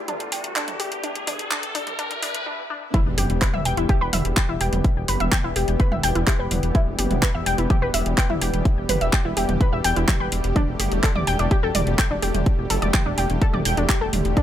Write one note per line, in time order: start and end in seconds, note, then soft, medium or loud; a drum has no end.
0.00 2.42 E2 medium
0.00 2.46 E2 medium
0.00 2.42 D3 medium
0.00 2.46 E3 medium
0.00 2.42 G3 medium
0.00 2.42 A3 medium
0.00 2.42 G4 medium
0.00 riser medium
0.08 0.15 D4 loud
0.08 closed hi-hat medium
0.08 mid tom loud
0.20 closed hi-hat medium
0.32 0.38 G4 medium
0.32 open hi-hat loud
0.44 closed hi-hat medium
0.56 0.62 D4 loud
0.56 clap loud
0.56 closed hi-hat medium
0.68 closed hi-hat medium
0.68 mid tom medium
0.80 0.86 G4 medium
0.80 open hi-hat medium
0.92 closed hi-hat medium
1.03 1.10 D4 loud
1.03 closed hi-hat medium
1.16 closed hi-hat medium
1.27 1.34 D4 loud
1.27 mid tom medium
1.27 open hi-hat loud
1.39 closed hi-hat medium
1.51 1.57 D4 loud
1.51 clap loud
1.51 closed hi-hat medium
1.63 closed hi-hat medium
1.75 1.81 D4 loud
1.75 open hi-hat medium
1.87 closed hi-hat medium
1.87 mid tom loud
1.99 2.05 D4 loud
1.99 closed hi-hat medium
1.99 swell medium
2.11 closed hi-hat medium
2.22 2.29 D4 loud
2.22 open hi-hat loud
2.35 closed hi-hat medium
2.46 2.53 D4 loud
2.70 2.76 D4 loud
2.94 10.52 E3 medium
2.94 14.43 G3 medium
2.94 10.52 B3 medium
2.94 3.00 E4 loud
2.94 14.43 G4 medium
2.94 3.00 E5 medium
2.94 kick loud
2.94 closed hi-hat soft
2.94 mid tom medium
2.94 impact medium
3.06 3.14 E1 medium
3.18 3.26 F#1 medium
3.18 3.24 G4 medium
3.18 3.24 G5 medium
3.18 open hi-hat loud
3.30 3.38 E1 loud
3.30 closed hi-hat soft
3.42 3.48 B4 medium
3.42 3.48 B5 medium
3.42 kick loud
3.42 clap loud
3.42 closed hi-hat soft
3.54 3.62 E1 medium
3.54 3.63 E5 medium
3.54 3.63 E6 medium
3.54 mid tom loud
3.65 3.74 E1 loud
3.65 3.75 G5 loud
3.65 3.75 G6 medium
3.65 open hi-hat medium
3.77 3.86 E1 medium
3.77 3.84 E4 medium
3.77 3.84 E5 medium
3.77 closed hi-hat soft
3.89 3.95 G4 loud
3.89 3.95 G5 medium
3.89 kick loud
3.89 closed hi-hat soft
4.01 4.10 E1 medium
4.01 4.05 B4 loud
4.01 4.05 B5 medium
4.13 4.21 E1 loud
4.13 4.19 E5 medium
4.13 4.19 E6 medium
4.13 mid tom medium
4.13 open hi-hat loud
4.25 4.33 E1 medium
4.25 closed hi-hat soft
4.37 4.41 G5 loud
4.37 4.41 G6 medium
4.37 kick loud
4.37 clap loud
4.37 closed hi-hat soft
4.49 4.57 E1 medium
4.49 4.55 E4 medium
4.49 4.55 E5 soft
4.61 4.69 E1 loud
4.61 4.67 G4 medium
4.61 4.67 G5 medium
4.61 open hi-hat medium
4.73 4.81 E1 medium
4.73 closed hi-hat soft
4.73 mid tom medium
4.84 kick loud
4.84 closed hi-hat soft
4.96 5.05 E1 medium
5.08 5.17 F#1 medium
5.08 5.15 B4 medium
5.08 5.15 B5 medium
5.08 open hi-hat loud
5.20 5.29 E1 medium
5.20 5.24 E5 medium
5.20 5.24 E6 soft
5.20 closed hi-hat soft
5.32 5.36 G5 loud
5.32 5.36 G6 medium
5.32 kick loud
5.32 clap loud
5.32 closed hi-hat soft
5.32 mid tom medium
5.44 5.52 E1 medium
5.44 5.50 E4 medium
5.44 5.50 E5 medium
5.56 5.64 E1 loud
5.56 5.65 G4 medium
5.56 5.65 G5 medium
5.56 open hi-hat medium
5.68 5.76 E1 medium
5.68 closed hi-hat soft
5.80 5.89 B4 medium
5.80 5.89 B5 medium
5.80 kick loud
5.80 closed hi-hat soft
5.92 6.00 E1 medium
5.92 5.95 E5 medium
5.92 5.95 E6 medium
5.92 mid tom medium
6.03 6.12 E1 loud
6.03 6.10 G5 loud
6.03 6.10 G6 medium
6.03 open hi-hat loud
6.15 6.24 E1 medium
6.15 6.19 E4 medium
6.15 6.19 E5 medium
6.15 closed hi-hat soft
6.27 6.37 G4 medium
6.27 6.37 G5 medium
6.27 kick loud
6.27 clap loud
6.27 closed hi-hat soft
6.39 6.48 E1 medium
6.39 6.45 B4 medium
6.39 6.45 B5 medium
6.51 6.60 E1 loud
6.51 mid tom medium
6.51 open hi-hat medium
6.63 6.71 E1 medium
6.63 closed hi-hat soft
6.75 6.81 E4 loud
6.75 6.81 E5 medium
6.75 kick loud
6.75 closed hi-hat soft
6.87 6.95 E1 medium
6.99 7.07 F#1 medium
6.99 7.05 G4 medium
6.99 7.05 G5 medium
6.99 open hi-hat loud
7.11 7.19 E1 loud
7.11 closed hi-hat soft
7.11 mid tom medium
7.22 7.29 B4 medium
7.22 7.29 B5 medium
7.22 kick loud
7.22 clap loud
7.22 closed hi-hat soft
7.34 7.43 E1 medium
7.34 7.44 E5 medium
7.34 7.44 E6 medium
7.46 7.55 E1 loud
7.46 7.56 G5 loud
7.46 7.56 G6 medium
7.46 open hi-hat loud
7.58 7.67 E1 medium
7.58 7.64 E4 medium
7.58 7.64 E5 medium
7.58 closed hi-hat soft
7.70 7.76 G4 loud
7.70 7.76 G5 medium
7.70 kick loud
7.70 closed hi-hat soft
7.70 mid tom medium
7.82 7.90 E1 medium
7.82 7.86 B4 loud
7.82 7.86 B5 medium
7.94 8.02 E1 loud
7.94 8.00 E5 medium
7.94 8.00 E6 medium
7.94 open hi-hat loud
8.06 8.14 E1 medium
8.06 closed hi-hat soft
8.18 8.22 G5 loud
8.18 8.21 G6 medium
8.18 kick loud
8.18 clap loud
8.18 closed hi-hat soft
8.30 8.38 E1 medium
8.30 8.36 E4 medium
8.30 8.36 E5 medium
8.30 mid tom medium
8.42 8.50 E1 loud
8.42 8.48 G4 medium
8.42 8.48 G5 medium
8.42 open hi-hat loud
8.54 8.62 E1 medium
8.54 closed hi-hat soft
8.65 kick loud
8.65 closed hi-hat soft
8.77 8.86 E1 medium
8.89 8.98 F#1 medium
8.89 8.95 B4 medium
8.89 8.95 B5 medium
8.89 mid tom medium
8.89 open hi-hat loud
9.01 9.10 E1 medium
9.01 9.05 E5 medium
9.01 9.05 E6 medium
9.01 closed hi-hat soft
9.13 9.17 G5 loud
9.13 9.17 G6 medium
9.13 kick loud
9.13 clap loud
9.13 closed hi-hat soft
9.25 9.33 E1 medium
9.25 9.31 E4 medium
9.25 9.31 E5 medium
9.37 9.45 E1 medium
9.37 9.46 G4 medium
9.37 9.46 G5 medium
9.37 open hi-hat loud
9.49 9.57 E1 medium
9.49 closed hi-hat soft
9.49 mid tom medium
9.61 9.70 B4 medium
9.61 9.70 B5 medium
9.61 kick loud
9.61 closed hi-hat soft
9.73 9.81 E1 medium
9.73 9.76 E5 medium
9.73 9.76 E6 medium
9.84 9.93 E1 medium
9.84 9.91 G5 loud
9.84 9.91 G6 medium
9.84 open hi-hat loud
9.96 10.05 E1 medium
9.96 10.00 E4 medium
9.96 10.00 E5 medium
9.96 closed hi-hat soft
10.08 10.18 G4 medium
10.08 10.18 G5 medium
10.08 kick loud
10.08 clap loud
10.08 closed hi-hat soft
10.08 mid tom medium
10.20 10.29 E1 medium
10.20 10.26 B4 medium
10.20 10.26 B5 medium
10.32 10.41 E1 loud
10.32 open hi-hat loud
10.44 10.52 E1 medium
10.44 closed hi-hat soft
10.56 14.43 D3 medium
10.56 14.43 A3 medium
10.56 10.62 D4 loud
10.56 10.62 D5 medium
10.56 kick loud
10.56 closed hi-hat soft
10.56 mid tom medium
10.68 10.76 E1 medium
10.80 10.88 F#1 medium
10.80 10.86 G4 medium
10.80 10.86 G5 medium
10.80 open hi-hat loud
10.92 11.00 E1 loud
10.92 closed hi-hat soft
11.03 11.10 A4 medium
11.03 11.10 A5 medium
11.03 kick loud
11.03 clap loud
11.03 closed hi-hat soft
11.15 11.24 E1 medium
11.15 11.25 D5 medium
11.15 11.25 D6 medium
11.15 mid tom loud
11.27 11.36 E1 medium
11.27 11.37 G5 loud
11.27 11.37 G6 medium
11.27 open hi-hat medium
11.39 11.48 E1 medium
11.39 11.45 D4 medium
11.39 11.45 D5 medium
11.39 closed hi-hat soft
11.51 11.57 G4 loud
11.51 11.57 G5 medium
11.51 kick loud
11.51 closed hi-hat soft
11.63 11.71 E1 medium
11.63 11.67 A4 medium
11.63 11.67 A5 medium
11.75 11.83 E1 loud
11.75 11.81 D5 medium
11.75 11.81 D6 medium
11.75 mid tom medium
11.75 open hi-hat loud
11.87 11.95 E1 medium
11.87 closed hi-hat soft
11.99 12.02 G5 loud
11.99 12.02 G6 medium
11.99 kick loud
11.99 clap loud
11.99 closed hi-hat soft
12.11 12.19 E1 medium
12.11 12.17 D4 medium
12.11 12.17 D5 soft
12.22 12.31 E1 loud
12.22 12.29 G4 medium
12.22 12.29 G5 medium
12.22 open hi-hat medium
12.34 12.43 E1 medium
12.34 closed hi-hat soft
12.34 mid tom medium
12.46 kick loud
12.46 closed hi-hat soft
12.58 12.67 E1 medium
12.70 12.79 F#1 medium
12.70 12.76 A4 medium
12.70 12.76 A5 medium
12.70 open hi-hat loud
12.82 12.90 E1 medium
12.82 12.86 D5 medium
12.82 12.86 D6 medium
12.82 closed hi-hat soft
12.94 12.98 G5 loud
12.94 12.98 G6 medium
12.94 kick loud
12.94 clap loud
12.94 closed hi-hat soft
12.94 mid tom medium
13.06 13.14 E1 medium
13.06 13.12 D4 medium
13.06 13.12 D5 medium
13.18 13.26 E1 loud
13.18 13.27 G4 medium
13.18 13.27 G5 medium
13.18 open hi-hat medium
13.30 13.38 E1 medium
13.30 closed hi-hat soft
13.42 13.51 A4 medium
13.42 13.51 A5 medium
13.42 kick loud
13.42 closed hi-hat soft
13.54 13.62 E1 medium
13.54 13.57 D5 medium
13.54 13.57 D6 medium
13.54 mid tom loud
13.65 13.74 E1 loud
13.65 13.72 G5 loud
13.65 13.72 G6 medium
13.65 open hi-hat loud
13.77 13.86 E1 medium
13.77 13.81 D4 medium
13.77 13.81 D5 medium
13.77 closed hi-hat soft
13.89 13.99 G4 medium
13.89 13.99 G5 medium
13.89 kick loud
13.89 clap loud
13.89 closed hi-hat soft
14.01 14.10 E1 medium
14.01 14.07 A4 medium
14.01 14.07 A5 soft
14.13 14.21 E1 loud
14.13 mid tom medium
14.13 open hi-hat medium
14.25 14.33 E1 medium
14.25 closed hi-hat soft
14.37 14.43 D4 loud
14.37 14.43 D5 medium
14.37 kick loud
14.37 closed hi-hat soft